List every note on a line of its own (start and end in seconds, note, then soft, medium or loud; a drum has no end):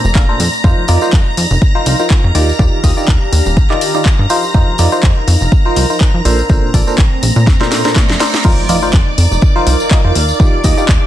0.00 0.64 A3 medium
0.00 1.33 C4 medium
0.00 1.33 D5 medium
0.00 8.46 A#5 medium
0.00 8.46 A#6 medium
0.04 0.34 F1 medium
0.04 tambourine medium
0.15 0.26 A#2 medium
0.15 0.26 D4 medium
0.15 0.26 A4 medium
0.15 0.26 A#4 medium
0.15 0.26 F5 medium
0.15 kick loud
0.15 clap loud
0.15 tambourine soft
0.29 0.41 A#2 medium
0.29 0.41 D4 medium
0.29 0.41 A4 medium
0.29 0.41 A#4 medium
0.29 0.41 C5 medium
0.40 0.49 F2 loud
0.40 open hi-hat medium
0.40 tambourine loud
0.53 tambourine medium
0.64 0.73 F2 medium
0.64 0.85 F3 medium
0.64 0.85 D#4 medium
0.64 2.35 D#4 medium
0.64 0.85 F4 medium
0.64 0.85 A#4 medium
0.64 0.85 C5 loud
0.64 kick loud
0.64 tambourine soft
0.88 0.98 F2 medium
0.88 1.00 F3 medium
0.88 1.00 D#4 medium
0.88 1.00 F4 medium
0.88 1.00 A#4 medium
0.88 1.00 D5 loud
0.88 open hi-hat loud
0.88 tambourine medium
1.01 1.14 F3 medium
1.01 1.14 D#4 medium
1.01 1.14 F4 medium
1.01 1.14 A#4 medium
1.01 1.14 C5 medium
1.01 tambourine medium
1.12 1.22 F2 medium
1.12 3.13 A#4 medium
1.12 kick loud
1.12 clap loud
1.12 tambourine soft
1.27 7.14 F5 medium
1.37 1.46 F2 loud
1.37 open hi-hat medium
1.37 tambourine medium
1.51 1.58 F1 medium
1.51 tambourine soft
1.62 kick loud
1.62 tambourine soft
1.75 1.96 F3 medium
1.75 1.96 D#4 medium
1.75 1.96 F4 medium
1.75 1.96 A#4 medium
1.75 1.96 C5 loud
1.86 1.95 C2 loud
1.86 open hi-hat loud
1.86 tambourine medium
1.99 2.21 F3 medium
1.99 2.21 D#4 medium
1.99 2.21 F4 medium
1.99 2.21 A#4 medium
1.99 2.21 C5 medium
1.99 tambourine medium
2.10 kick loud
2.10 clap loud
2.10 tambourine soft
2.24 2.31 F2 medium
2.35 2.52 D#2 medium
2.35 2.49 D#3 loud
2.35 4.30 D4 loud
2.35 2.49 D#4 medium
2.35 2.49 F4 medium
2.35 2.49 G4 medium
2.35 2.49 D5 loud
2.35 open hi-hat medium
2.35 tambourine medium
2.49 5.09 G4 medium
2.49 tambourine medium
2.59 2.68 D#2 loud
2.59 2.80 D#3 medium
2.59 2.80 D#4 medium
2.59 2.80 F4 medium
2.59 2.80 G4 medium
2.59 2.80 D5 loud
2.59 kick loud
2.59 tambourine soft
2.84 2.93 D#2 medium
2.84 2.95 D#3 medium
2.84 2.95 D#4 medium
2.84 2.95 F4 medium
2.84 2.95 G4 medium
2.84 2.95 D#5 loud
2.84 kick medium
2.84 open hi-hat loud
2.84 tambourine medium
2.97 3.09 D#3 medium
2.97 3.09 D#4 medium
2.97 3.09 F4 medium
2.97 3.09 G4 medium
2.97 3.09 D5 medium
2.97 tambourine medium
3.08 3.17 D#2 medium
3.08 kick loud
3.08 clap loud
3.32 3.41 D#2 medium
3.32 open hi-hat medium
3.32 tambourine medium
3.46 3.58 D#1 medium
3.46 tambourine medium
3.57 3.66 A#1 medium
3.57 kick loud
3.57 tambourine soft
3.70 3.91 D#3 medium
3.70 3.91 D#4 medium
3.70 3.91 F4 medium
3.70 3.91 G4 medium
3.70 3.91 D5 loud
3.70 clap soft
3.81 open hi-hat loud
3.81 tambourine medium
3.95 4.16 D#3 medium
3.95 4.16 D#4 medium
3.95 4.16 F4 medium
3.95 4.16 G4 medium
3.95 4.16 D5 medium
3.95 tambourine soft
4.05 kick loud
4.05 clap loud
4.05 tambourine soft
4.19 4.26 G2 loud
4.30 4.45 F3 medium
4.30 6.25 D#4 medium
4.30 4.45 D#4 medium
4.30 4.45 F4 medium
4.30 4.45 A#4 medium
4.30 4.45 C5 loud
4.30 open hi-hat medium
4.30 tambourine medium
4.43 tambourine medium
4.54 4.63 F2 medium
4.54 4.76 F3 medium
4.54 4.76 D#4 medium
4.54 4.76 F4 medium
4.54 4.76 A#4 medium
4.54 4.76 C5 loud
4.54 kick loud
4.54 tambourine soft
4.74 6.25 A#4 medium
4.78 4.88 F2 medium
4.78 4.90 F3 medium
4.78 4.90 D#4 medium
4.78 4.90 F4 medium
4.78 4.90 A#4 medium
4.78 4.90 D5 loud
4.78 open hi-hat loud
4.78 tambourine medium
4.92 5.05 F3 medium
4.92 5.05 D#4 medium
4.92 5.05 F4 medium
4.92 5.05 A#4 medium
4.92 5.05 C5 loud
4.92 tambourine medium
5.03 5.12 F2 medium
5.03 kick loud
5.03 clap loud
5.03 tambourine soft
5.28 5.36 F2 loud
5.28 open hi-hat medium
5.28 tambourine medium
5.41 5.48 F1 medium
5.41 tambourine soft
5.52 kick loud
5.52 tambourine soft
5.65 5.87 F3 medium
5.65 5.87 D#4 medium
5.65 5.87 F4 medium
5.65 5.87 A#4 medium
5.65 5.87 C5 loud
5.76 5.85 C2 loud
5.76 open hi-hat loud
5.76 tambourine medium
5.90 6.11 F3 medium
5.90 6.11 D#4 medium
5.90 6.11 F4 medium
5.90 6.11 A#4 medium
5.90 6.11 C5 medium
5.90 tambourine soft
6.01 kick loud
6.01 clap loud
6.01 tambourine soft
6.14 6.21 F2 medium
6.25 6.42 A#1 medium
6.25 6.40 A#2 medium
6.25 9.14 C4 medium
6.25 6.40 D4 medium
6.25 6.40 A4 medium
6.25 6.40 A#4 medium
6.25 6.40 C5 loud
6.25 open hi-hat medium
6.25 tambourine medium
6.39 tambourine soft
6.50 6.58 A#1 loud
6.50 6.71 A#2 medium
6.50 6.71 D4 medium
6.50 6.71 A4 medium
6.50 6.71 A#4 medium
6.50 6.71 C5 loud
6.50 kick loud
6.50 tambourine soft
6.74 6.83 A#1 medium
6.74 6.85 A#2 medium
6.74 6.85 D4 medium
6.74 6.85 A4 medium
6.74 6.85 A#4 medium
6.74 6.85 D5 loud
6.74 kick medium
6.74 open hi-hat loud
6.74 tambourine medium
6.82 8.45 A3 medium
6.87 7.00 A#2 medium
6.87 7.00 D4 medium
6.87 7.00 A4 medium
6.87 7.00 A#4 medium
6.87 7.00 C5 medium
6.87 tambourine soft
6.98 7.07 A#1 medium
6.98 kick loud
6.98 clap loud
6.98 tambourine soft
7.07 9.14 D5 medium
7.23 7.32 A#1 loud
7.23 open hi-hat medium
7.23 tambourine medium
7.36 7.49 A#2 medium
7.36 tambourine soft
7.47 7.56 F2 medium
7.47 kick loud
7.47 snare medium
7.47 tambourine soft
7.47 reverse cymbal medium
7.60 7.82 A#2 loud
7.60 7.82 D4 medium
7.60 7.82 A4 medium
7.60 7.82 A#4 medium
7.60 7.82 C5 loud
7.60 snare medium
7.71 snare medium
7.71 open hi-hat medium
7.71 tambourine medium
7.85 8.06 A#2 medium
7.85 8.06 D4 medium
7.85 8.06 A4 medium
7.85 8.06 A#4 medium
7.85 8.06 C5 medium
7.85 snare medium
7.85 tambourine medium
7.96 8.11 A#2 medium
7.96 kick loud
7.96 snare medium
7.96 clap loud
8.09 8.17 F2 loud
8.09 snare medium
8.20 8.35 D4 loud
8.20 8.35 A4 medium
8.20 8.35 A#4 medium
8.20 8.35 C5 loud
8.20 snare loud
8.20 open hi-hat medium
8.20 tambourine medium
8.34 snare medium
8.34 tambourine soft
8.45 8.54 F2 loud
8.45 8.66 F3 medium
8.45 10.15 D#4 medium
8.45 8.66 D#4 medium
8.45 8.66 F4 medium
8.45 8.66 A#4 medium
8.45 8.66 C5 loud
8.45 11.07 D5 medium
8.45 11.07 D6 medium
8.45 kick loud
8.45 tambourine soft
8.45 crash loud
8.45 impact medium
8.69 8.78 F2 medium
8.69 8.81 F3 medium
8.69 8.81 D#4 medium
8.69 8.81 F4 medium
8.69 8.81 A#4 medium
8.69 8.81 D5 loud
8.69 open hi-hat loud
8.69 tambourine medium
8.82 8.95 F3 medium
8.82 8.95 D#4 medium
8.82 8.95 F4 medium
8.82 8.95 A#4 medium
8.82 8.95 C5 loud
8.82 tambourine medium
8.93 9.02 F2 medium
8.93 kick loud
8.93 clap loud
8.93 tambourine soft
9.00 10.94 A#4 medium
9.18 9.27 F2 loud
9.18 11.07 F5 medium
9.18 open hi-hat medium
9.18 tambourine medium
9.31 9.39 F1 medium
9.31 tambourine medium
9.41 kick loud
9.41 tambourine soft
9.56 9.77 F3 medium
9.56 9.77 D#4 medium
9.56 9.77 F4 medium
9.56 9.77 A#4 medium
9.56 9.77 C5 loud
9.67 9.76 C2 loud
9.67 open hi-hat loud
9.67 tambourine medium
9.80 tambourine medium
9.91 10.01 D#3 medium
9.91 10.01 D#4 medium
9.91 10.01 F4 medium
9.91 10.01 A#4 medium
9.91 10.01 D#5 loud
9.91 kick loud
9.91 clap loud
10.04 10.12 F2 medium
10.04 10.14 D#3 medium
10.04 10.14 D#4 medium
10.04 10.14 F4 medium
10.04 10.14 A#4 medium
10.04 10.14 C5 loud
10.15 10.32 D#2 medium
10.15 11.07 D4 medium
10.15 open hi-hat medium
10.15 tambourine medium
10.29 tambourine medium
10.35 11.07 G4 medium
10.40 10.49 D#2 medium
10.40 10.61 D#3 medium
10.40 10.61 D#4 medium
10.40 10.61 F4 medium
10.40 10.61 G4 medium
10.40 10.61 D5 loud
10.40 kick loud
10.40 tambourine soft
10.64 10.73 D#2 medium
10.64 10.76 D#3 medium
10.64 10.76 D#4 medium
10.64 10.76 F4 medium
10.64 10.76 G4 medium
10.64 10.76 D#5 loud
10.64 kick medium
10.64 open hi-hat loud
10.64 tambourine medium
10.77 10.90 D#3 medium
10.77 10.90 D#4 medium
10.77 10.90 F4 medium
10.77 10.90 G4 medium
10.77 10.90 D5 loud
10.77 tambourine medium
10.89 10.97 D#2 medium
10.89 kick loud
10.89 clap loud
10.89 tambourine soft